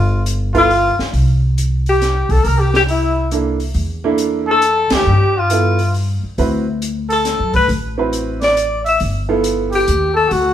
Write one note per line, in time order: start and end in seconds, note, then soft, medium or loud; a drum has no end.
0.00 0.94 G1 medium
0.00 0.22 F4 medium
0.00 0.24 F4 medium
0.26 closed hi-hat medium
0.54 0.68 B3 medium
0.54 0.68 E4 medium
0.54 0.95 F4 loud
0.54 0.68 F4 medium
0.54 0.97 F4 loud
0.54 0.68 A4 medium
0.54 kick soft
0.54 open hi-hat soft
0.70 open hi-hat soft
0.99 muted upright bass stroke soft
0.99 snare soft
1.13 2.25 C2 medium
1.13 open hi-hat soft
1.58 closed hi-hat medium
1.86 2.34 G4 medium
1.86 2.33 G4 medium
1.86 open hi-hat soft
2.02 snare soft
2.02 closed hi-hat soft
2.29 2.43 B1 medium
2.29 2.45 A4 medium
2.29 2.49 A4 medium
2.29 kick medium
2.29 open hi-hat soft
2.44 3.72 C2 medium
2.44 2.60 A#4 medium
2.44 2.62 A#4 loud
2.44 open hi-hat soft
2.58 2.72 G4 medium
2.58 2.74 G4 medium
2.73 2.80 G4 medium
2.73 2.82 G4 loud
2.73 snare soft
2.88 3.29 E4 medium
2.88 3.30 E4 medium
2.88 open hi-hat soft
3.31 3.58 A#3 medium
3.31 3.58 D4 medium
3.31 3.58 E4 soft
3.31 3.58 A4 medium
3.31 closed hi-hat soft
3.60 open hi-hat soft
3.74 4.87 E2 medium
3.74 open hi-hat soft
4.04 4.60 A#3 medium
4.04 4.60 D4 medium
4.04 4.60 E4 medium
4.04 4.61 A4 medium
4.18 closed hi-hat medium
4.47 4.94 A4 loud
4.51 4.97 A4 loud
4.62 closed hi-hat medium
4.90 5.05 D2 medium
4.90 5.39 G4 medium
4.90 snare medium
4.90 ride medium
4.96 5.41 G4 medium
5.07 6.19 G2 medium
5.38 5.95 F4 medium
5.38 5.96 F4 medium
5.50 5.76 B3 medium
5.50 5.77 E4 soft
5.50 5.77 F4 soft
5.50 5.77 A4 medium
5.50 closed hi-hat medium
5.79 open hi-hat soft
5.94 open hi-hat soft
6.23 muted upright bass stroke soft
6.38 7.36 D2 medium
6.38 6.64 C4 medium
6.38 6.64 E4 medium
6.38 6.64 F#4 medium
6.38 6.65 B4 medium
6.38 open hi-hat soft
6.82 closed hi-hat medium
7.09 7.50 A4 medium
7.09 7.52 A4 medium
7.09 open hi-hat soft
7.25 snare soft
7.25 closed hi-hat medium
7.40 7.53 F#2 medium
7.54 7.68 A2 medium
7.54 7.68 B4 medium
7.54 7.69 B4 loud
7.54 kick medium
7.54 open hi-hat soft
7.68 8.96 A1 medium
7.68 open hi-hat soft
7.98 8.54 C4 medium
7.98 8.54 E4 medium
7.98 8.54 F#4 medium
7.98 8.54 B4 medium
8.13 closed hi-hat medium
8.41 8.82 D5 medium
8.41 8.84 D5 medium
8.41 snare soft
8.41 open hi-hat soft
8.57 closed hi-hat medium
8.84 8.99 E5 medium
8.84 open hi-hat soft
8.89 9.01 E5 medium
9.00 9.84 G1 medium
9.00 open hi-hat soft
9.29 9.85 B3 medium
9.29 9.85 E4 medium
9.29 9.85 F4 medium
9.29 9.85 A4 medium
9.44 closed hi-hat medium
9.71 10.13 G4 medium
9.71 open hi-hat soft
9.75 10.15 G4 medium
9.88 10.29 D#2 medium
9.88 closed hi-hat medium
10.14 10.30 A4 medium
10.14 10.34 A4 medium
10.28 10.54 D2 medium
10.28 10.54 F#4 medium
10.28 open hi-hat soft
10.33 10.54 F#4 medium